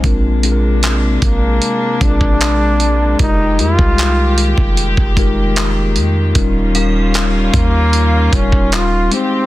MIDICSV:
0, 0, Header, 1, 7, 480
1, 0, Start_track
1, 0, Tempo, 789474
1, 23, Time_signature, 4, 2, 24, 8
1, 5752, End_track
2, 0, Start_track
2, 0, Title_t, "Synth bell"
2, 0, Program_c, 0, 98
2, 4104, Note_on_c, 0, 77, 78
2, 4966, Note_off_c, 0, 77, 0
2, 5752, End_track
3, 0, Start_track
3, 0, Title_t, "Tine electric piano"
3, 0, Program_c, 1, 4
3, 0, Control_c, 1, 64, 127
3, 17, Note_on_c, 1, 56, 82
3, 21, Note_on_c, 1, 60, 80
3, 25, Note_on_c, 1, 62, 78
3, 30, Note_on_c, 1, 65, 81
3, 31, Control_c, 1, 64, 0
3, 34, Note_on_c, 1, 70, 96
3, 146, Control_c, 1, 64, 127
3, 223, Note_off_c, 1, 56, 0
3, 226, Note_off_c, 1, 60, 0
3, 228, Note_off_c, 1, 62, 0
3, 230, Note_off_c, 1, 65, 0
3, 232, Note_off_c, 1, 70, 0
3, 258, Note_on_c, 1, 56, 74
3, 262, Note_on_c, 1, 60, 69
3, 266, Note_on_c, 1, 62, 70
3, 270, Note_on_c, 1, 65, 69
3, 275, Note_on_c, 1, 68, 70
3, 308, Note_off_c, 1, 68, 0
3, 314, Note_on_c, 1, 70, 86
3, 1073, Note_off_c, 1, 56, 0
3, 1075, Note_off_c, 1, 60, 0
3, 1077, Note_off_c, 1, 62, 0
3, 1079, Note_off_c, 1, 65, 0
3, 1102, Note_off_c, 1, 70, 0
3, 1218, Note_on_c, 1, 56, 73
3, 1221, Note_on_c, 1, 60, 65
3, 1226, Note_on_c, 1, 62, 64
3, 1230, Note_on_c, 1, 65, 69
3, 1234, Note_on_c, 1, 68, 63
3, 1268, Note_off_c, 1, 68, 0
3, 1274, Note_on_c, 1, 70, 80
3, 1830, Note_off_c, 1, 56, 0
3, 1832, Note_off_c, 1, 60, 0
3, 1834, Note_off_c, 1, 62, 0
3, 1836, Note_off_c, 1, 65, 0
3, 1858, Note_off_c, 1, 70, 0
3, 1939, Note_on_c, 1, 56, 73
3, 1942, Note_on_c, 1, 63, 63
3, 1947, Note_on_c, 1, 65, 66
3, 1950, Note_on_c, 1, 67, 63
3, 1952, Control_c, 1, 64, 0
3, 1955, Note_on_c, 1, 70, 81
3, 2071, Control_c, 1, 64, 127
3, 2144, Note_off_c, 1, 56, 0
3, 2146, Note_off_c, 1, 63, 0
3, 2148, Note_off_c, 1, 65, 0
3, 2150, Note_off_c, 1, 67, 0
3, 2152, Note_off_c, 1, 70, 0
3, 2178, Note_on_c, 1, 55, 51
3, 2182, Note_on_c, 1, 63, 59
3, 2187, Note_on_c, 1, 65, 60
3, 2191, Note_on_c, 1, 67, 59
3, 2195, Note_on_c, 1, 70, 70
3, 2218, Note_on_c, 1, 56, 64
3, 2220, Note_off_c, 1, 55, 0
3, 2995, Note_off_c, 1, 63, 0
3, 2998, Note_off_c, 1, 65, 0
3, 3000, Note_off_c, 1, 67, 0
3, 3002, Note_off_c, 1, 70, 0
3, 3013, Note_off_c, 1, 56, 0
3, 3138, Note_on_c, 1, 56, 87
3, 3142, Note_on_c, 1, 63, 78
3, 3146, Note_on_c, 1, 65, 81
3, 3150, Note_on_c, 1, 67, 81
3, 3154, Note_on_c, 1, 70, 99
3, 3750, Note_off_c, 1, 56, 0
3, 3752, Note_off_c, 1, 63, 0
3, 3754, Note_off_c, 1, 65, 0
3, 3756, Note_off_c, 1, 67, 0
3, 3758, Note_off_c, 1, 70, 0
3, 3858, Note_on_c, 1, 55, 88
3, 3862, Note_on_c, 1, 61, 86
3, 3867, Note_on_c, 1, 63, 83
3, 3870, Note_on_c, 1, 65, 80
3, 3872, Control_c, 1, 64, 0
3, 3875, Note_on_c, 1, 70, 94
3, 3973, Control_c, 1, 64, 127
3, 4064, Note_off_c, 1, 55, 0
3, 4066, Note_off_c, 1, 61, 0
3, 4068, Note_off_c, 1, 63, 0
3, 4070, Note_off_c, 1, 65, 0
3, 4072, Note_off_c, 1, 70, 0
3, 4100, Note_on_c, 1, 55, 77
3, 4103, Note_on_c, 1, 61, 71
3, 4108, Note_on_c, 1, 63, 75
3, 4111, Note_on_c, 1, 65, 70
3, 4116, Note_on_c, 1, 70, 91
3, 4914, Note_off_c, 1, 55, 0
3, 4916, Note_off_c, 1, 61, 0
3, 4918, Note_off_c, 1, 63, 0
3, 4920, Note_off_c, 1, 65, 0
3, 4922, Note_off_c, 1, 70, 0
3, 5059, Note_on_c, 1, 55, 73
3, 5063, Note_on_c, 1, 61, 69
3, 5067, Note_on_c, 1, 63, 66
3, 5070, Note_on_c, 1, 65, 69
3, 5075, Note_on_c, 1, 70, 79
3, 5539, Note_off_c, 1, 63, 0
3, 5539, Note_on_c, 1, 56, 78
3, 5541, Note_off_c, 1, 55, 0
3, 5542, Note_on_c, 1, 60, 71
3, 5543, Note_off_c, 1, 61, 0
3, 5546, Note_on_c, 1, 63, 66
3, 5547, Note_off_c, 1, 65, 0
3, 5549, Note_off_c, 1, 70, 0
3, 5550, Control_c, 1, 64, 0
3, 5551, Note_on_c, 1, 67, 71
3, 5555, Note_on_c, 1, 72, 89
3, 5638, Control_c, 1, 64, 127
3, 5744, Note_off_c, 1, 56, 0
3, 5746, Note_off_c, 1, 60, 0
3, 5748, Note_off_c, 1, 63, 0
3, 5750, Note_off_c, 1, 67, 0
3, 5752, Note_off_c, 1, 72, 0
3, 5752, End_track
4, 0, Start_track
4, 0, Title_t, "Trombone"
4, 0, Program_c, 2, 57
4, 756, Note_on_c, 2, 58, 95
4, 1235, Note_on_c, 2, 62, 107
4, 1244, Note_off_c, 2, 58, 0
4, 1949, Note_off_c, 2, 62, 0
4, 1953, Note_on_c, 2, 63, 103
4, 2193, Note_on_c, 2, 65, 104
4, 2202, Note_off_c, 2, 63, 0
4, 2908, Note_off_c, 2, 65, 0
4, 4597, Note_on_c, 2, 58, 107
4, 5078, Note_on_c, 2, 61, 99
4, 5087, Note_off_c, 2, 58, 0
4, 5318, Note_on_c, 2, 65, 110
4, 5327, Note_off_c, 2, 61, 0
4, 5550, Note_off_c, 2, 65, 0
4, 5558, Note_on_c, 2, 60, 107
4, 5752, Note_off_c, 2, 60, 0
4, 5752, End_track
5, 0, Start_track
5, 0, Title_t, "String section"
5, 0, Program_c, 3, 48
5, 22, Note_on_c, 3, 48, 72
5, 22, Note_on_c, 3, 62, 76
5, 23, Note_on_c, 3, 56, 63
5, 23, Note_on_c, 3, 58, 65
5, 1923, Note_off_c, 3, 48, 0
5, 1924, Note_off_c, 3, 62, 0
5, 1944, Note_on_c, 3, 51, 70
5, 1944, Note_on_c, 3, 67, 79
5, 3839, Note_off_c, 3, 56, 0
5, 3839, Note_off_c, 3, 58, 0
5, 3844, Note_off_c, 3, 67, 0
5, 3865, Note_on_c, 3, 55, 68
5, 3865, Note_on_c, 3, 65, 83
5, 3866, Note_on_c, 3, 61, 69
5, 5527, Note_off_c, 3, 55, 0
5, 5528, Note_off_c, 3, 61, 0
5, 5528, Note_off_c, 3, 65, 0
5, 5542, Note_on_c, 3, 56, 61
5, 5543, Note_on_c, 3, 60, 60
5, 5543, Note_on_c, 3, 67, 76
5, 5752, Note_off_c, 3, 51, 0
5, 5752, Note_off_c, 3, 56, 0
5, 5752, Note_off_c, 3, 60, 0
5, 5752, Note_off_c, 3, 67, 0
5, 5752, End_track
6, 0, Start_track
6, 0, Title_t, "808-style bass"
6, 0, Program_c, 4, 38
6, 24, Note_on_c, 4, 34, 106
6, 720, Note_off_c, 4, 34, 0
6, 744, Note_on_c, 4, 34, 100
6, 974, Note_off_c, 4, 34, 0
6, 1223, Note_on_c, 4, 34, 101
6, 1919, Note_off_c, 4, 34, 0
6, 1944, Note_on_c, 4, 29, 109
6, 2184, Note_on_c, 4, 41, 93
6, 2193, Note_off_c, 4, 29, 0
6, 2297, Note_off_c, 4, 41, 0
6, 2304, Note_on_c, 4, 36, 92
6, 2764, Note_off_c, 4, 36, 0
6, 2783, Note_on_c, 4, 29, 100
6, 3014, Note_off_c, 4, 29, 0
6, 3025, Note_on_c, 4, 29, 100
6, 3625, Note_on_c, 4, 41, 104
6, 3634, Note_off_c, 4, 29, 0
6, 3852, Note_off_c, 4, 41, 0
6, 3864, Note_on_c, 4, 27, 113
6, 4559, Note_off_c, 4, 27, 0
6, 4584, Note_on_c, 4, 39, 103
6, 5044, Note_off_c, 4, 39, 0
6, 5064, Note_on_c, 4, 27, 106
6, 5179, Note_off_c, 4, 27, 0
6, 5184, Note_on_c, 4, 27, 98
6, 5529, Note_off_c, 4, 27, 0
6, 5752, End_track
7, 0, Start_track
7, 0, Title_t, "Drums"
7, 23, Note_on_c, 9, 36, 103
7, 23, Note_on_c, 9, 42, 72
7, 84, Note_off_c, 9, 36, 0
7, 84, Note_off_c, 9, 42, 0
7, 264, Note_on_c, 9, 42, 57
7, 324, Note_off_c, 9, 42, 0
7, 504, Note_on_c, 9, 42, 72
7, 513, Note_on_c, 9, 39, 109
7, 564, Note_off_c, 9, 42, 0
7, 574, Note_off_c, 9, 39, 0
7, 742, Note_on_c, 9, 36, 97
7, 742, Note_on_c, 9, 42, 72
7, 802, Note_off_c, 9, 42, 0
7, 803, Note_off_c, 9, 36, 0
7, 983, Note_on_c, 9, 42, 73
7, 1044, Note_off_c, 9, 42, 0
7, 1222, Note_on_c, 9, 36, 85
7, 1223, Note_on_c, 9, 42, 57
7, 1283, Note_off_c, 9, 36, 0
7, 1284, Note_off_c, 9, 42, 0
7, 1342, Note_on_c, 9, 36, 86
7, 1403, Note_off_c, 9, 36, 0
7, 1463, Note_on_c, 9, 42, 64
7, 1471, Note_on_c, 9, 39, 113
7, 1524, Note_off_c, 9, 42, 0
7, 1532, Note_off_c, 9, 39, 0
7, 1702, Note_on_c, 9, 42, 59
7, 1763, Note_off_c, 9, 42, 0
7, 1941, Note_on_c, 9, 42, 70
7, 1942, Note_on_c, 9, 36, 105
7, 2002, Note_off_c, 9, 42, 0
7, 2003, Note_off_c, 9, 36, 0
7, 2183, Note_on_c, 9, 42, 57
7, 2243, Note_off_c, 9, 42, 0
7, 2302, Note_on_c, 9, 36, 91
7, 2363, Note_off_c, 9, 36, 0
7, 2422, Note_on_c, 9, 42, 75
7, 2432, Note_on_c, 9, 39, 113
7, 2483, Note_off_c, 9, 42, 0
7, 2492, Note_off_c, 9, 39, 0
7, 2661, Note_on_c, 9, 42, 71
7, 2722, Note_off_c, 9, 42, 0
7, 2782, Note_on_c, 9, 36, 91
7, 2843, Note_off_c, 9, 36, 0
7, 2902, Note_on_c, 9, 42, 73
7, 2963, Note_off_c, 9, 42, 0
7, 3024, Note_on_c, 9, 36, 93
7, 3085, Note_off_c, 9, 36, 0
7, 3142, Note_on_c, 9, 36, 88
7, 3143, Note_on_c, 9, 42, 63
7, 3203, Note_off_c, 9, 36, 0
7, 3204, Note_off_c, 9, 42, 0
7, 3382, Note_on_c, 9, 42, 68
7, 3390, Note_on_c, 9, 39, 115
7, 3443, Note_off_c, 9, 42, 0
7, 3451, Note_off_c, 9, 39, 0
7, 3622, Note_on_c, 9, 42, 60
7, 3683, Note_off_c, 9, 42, 0
7, 3861, Note_on_c, 9, 42, 73
7, 3863, Note_on_c, 9, 36, 104
7, 3922, Note_off_c, 9, 42, 0
7, 3923, Note_off_c, 9, 36, 0
7, 4103, Note_on_c, 9, 42, 55
7, 4164, Note_off_c, 9, 42, 0
7, 4342, Note_on_c, 9, 42, 73
7, 4352, Note_on_c, 9, 39, 106
7, 4403, Note_off_c, 9, 42, 0
7, 4413, Note_off_c, 9, 39, 0
7, 4582, Note_on_c, 9, 36, 102
7, 4582, Note_on_c, 9, 42, 72
7, 4642, Note_off_c, 9, 42, 0
7, 4643, Note_off_c, 9, 36, 0
7, 4822, Note_on_c, 9, 42, 77
7, 4883, Note_off_c, 9, 42, 0
7, 5062, Note_on_c, 9, 36, 92
7, 5063, Note_on_c, 9, 42, 60
7, 5123, Note_off_c, 9, 36, 0
7, 5124, Note_off_c, 9, 42, 0
7, 5183, Note_on_c, 9, 36, 80
7, 5243, Note_off_c, 9, 36, 0
7, 5303, Note_on_c, 9, 42, 64
7, 5310, Note_on_c, 9, 39, 117
7, 5363, Note_off_c, 9, 42, 0
7, 5371, Note_off_c, 9, 39, 0
7, 5542, Note_on_c, 9, 42, 61
7, 5603, Note_off_c, 9, 42, 0
7, 5752, End_track
0, 0, End_of_file